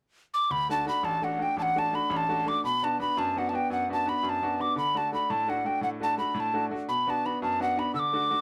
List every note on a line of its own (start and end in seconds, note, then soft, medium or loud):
0.34 0.53 D6 loud
0.50 0.86 D2 medium
0.50 0.70 B5 loud
0.69 0.84 A3 soft
0.69 0.85 D4 soft
0.69 0.85 F#4 medium
0.69 0.86 A5 medium
0.86 1.15 A3 soft
0.86 1.15 D4 soft
0.86 1.16 F#4 medium
0.86 1.06 B5 medium
1.03 1.39 A1 medium
1.03 1.25 A5 medium
1.22 1.37 A3 soft
1.22 1.38 D4 soft
1.22 1.38 F#4 soft
1.22 1.44 F#5 medium
1.39 1.68 A3 soft
1.39 1.68 D4 soft
1.39 1.69 F#4 soft
1.39 1.58 G5 medium
1.57 1.92 A1 medium
1.57 1.63 A5 medium
1.62 1.80 F#5 medium
1.76 1.91 A3 soft
1.76 1.92 D4 soft
1.76 1.92 F#4 soft
1.76 1.97 A5 medium
1.93 2.22 A3 soft
1.93 2.22 D4 soft
1.93 2.23 F#4 medium
1.93 2.12 B5 medium
2.10 2.45 A1 medium
2.10 2.18 B5 medium
2.17 2.50 A5 medium
2.29 2.45 A3 soft
2.29 2.45 D4 soft
2.29 2.45 F#4 medium
2.46 2.60 A3 soft
2.46 2.60 D4 soft
2.46 2.60 F#4 soft
2.46 2.64 D6 medium
2.64 2.99 B2 medium
2.64 2.86 B5 medium
2.82 2.98 B3 soft
2.82 2.98 D4 soft
2.82 2.98 F#4 medium
2.82 3.00 A5 medium
3.00 3.29 B3 soft
3.00 3.29 D4 soft
3.00 3.29 F#4 soft
3.00 3.20 B5 medium
3.17 3.52 F#2 medium
3.17 3.40 A5 medium
3.36 3.52 B3 soft
3.36 3.52 D4 soft
3.36 3.52 F#4 soft
3.36 3.51 F#5 medium
3.49 3.82 B3 soft
3.49 3.57 A5 medium
3.53 3.82 D4 soft
3.53 3.82 F#4 medium
3.53 3.71 G5 medium
3.70 4.05 F#2 medium
3.70 3.89 F#5 medium
3.89 4.05 B3 soft
3.89 4.05 D4 soft
3.89 4.06 F#4 medium
3.89 4.10 A5 medium
4.06 4.35 B3 soft
4.06 4.35 D4 soft
4.06 4.36 F#4 soft
4.06 4.25 B5 medium
4.23 4.58 F#2 medium
4.23 4.30 B5 medium
4.29 4.63 A5 medium
4.42 4.58 B3 soft
4.42 4.59 D4 soft
4.42 4.59 F#4 medium
4.59 4.73 B3 soft
4.59 4.73 D4 soft
4.59 4.73 F#4 soft
4.59 4.77 D6 medium
4.76 5.11 D3 medium
4.76 4.99 B5 medium
4.95 5.11 A3 soft
4.95 5.11 D4 soft
4.95 5.11 F#4 soft
4.95 5.13 A5 medium
5.12 5.41 A3 soft
5.12 5.41 D4 soft
5.12 5.41 F#4 soft
5.12 5.32 B5 medium
5.30 5.64 A2 medium
5.30 5.51 A5 medium
5.48 5.63 A3 soft
5.48 5.63 D4 soft
5.48 5.64 F#4 medium
5.48 5.68 F#5 medium
5.65 5.94 A3 soft
5.65 5.94 D4 soft
5.65 5.94 F#4 soft
5.65 5.83 G5 medium
5.81 6.17 A2 medium
5.81 5.89 F#5 medium
6.00 6.16 A3 soft
6.00 6.17 D4 soft
6.00 6.17 F#4 soft
6.00 6.18 A5 medium
6.18 6.47 A3 soft
6.18 6.47 D4 soft
6.18 6.47 F#4 soft
6.18 6.36 B5 medium
6.34 6.70 A2 medium
6.34 6.41 B5 medium
6.40 6.65 A5 medium
6.54 6.69 A3 soft
6.54 6.70 D4 soft
6.54 6.70 F#4 medium
6.71 6.84 A3 soft
6.71 6.85 D4 soft
6.71 6.85 F#4 soft
6.88 7.23 B2 medium
6.88 7.11 B5 medium
7.07 7.24 B3 soft
7.07 7.24 D4 soft
7.07 7.25 F#4 medium
7.07 7.27 A5 medium
7.25 7.54 B3 soft
7.25 7.54 D4 soft
7.25 7.54 F#4 soft
7.25 7.42 B5 medium
7.42 7.77 F#2 medium
7.42 7.60 A5 medium
7.60 7.75 B3 soft
7.60 7.75 D4 soft
7.60 7.76 F#4 soft
7.60 7.81 F#5 medium
7.77 7.90 B3 soft
7.77 7.91 D4 soft
7.77 7.91 F#4 soft
7.77 7.94 B5 medium
7.94 8.29 D3 medium
7.94 8.00 E6 medium
7.99 8.41 D6 medium
8.13 8.29 A3 soft
8.13 8.29 D4 soft
8.13 8.29 F#4 soft
8.30 8.41 A3 soft
8.30 8.41 D4 soft
8.30 8.41 F#4 soft